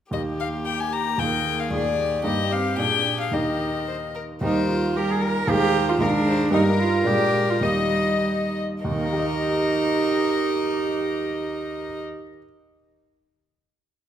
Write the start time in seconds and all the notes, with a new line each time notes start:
0.11 D#2 A#3 D#4 G4 D#5
0.40 F5
0.66 G4 G5
0.80 G#5
0.93 A#5
1.18 D#2 A#3 F4 G#4 A#4 G5
1.60 F5
1.71 D#2 A#3 F4 G#4 D5
1.99 G4
2.23 G2 A#3 D#4 G4 D#5
2.52 C4 F5
2.77 A#2 A#3 D4 G#4 G5
3.21 F5
3.31 D#2 A#3 D#4 G4 A#4 D#5
3.88 C5
4.15 A#4
4.41 D#2 G3 A#3 D#4 G4 A#4 C5
4.69 F4
4.96 G3 G4 A#4
5.11 G#4
5.23 A#4
5.47 D#2 G#3 A#3 F4 G4 G#4 A#4 C5
5.89 F4
5.98 D#2 G#3 A#3 D4 F4 G#4 A#4
6.27 C5
6.50 G2 G3 A#3 D#4 G4 A#4
6.80 F4
7.04 A#2 G#3 A#3 D4 G4 G#4 D5
7.50 F4
7.61 D#2 G3 A#3 D#4 G4 D#5
8.84 D#2 D#4 G4 A#4 D#5
8.91 D#3
8.98 A#3
9.05 D#4
9.13 G4
9.19 D#5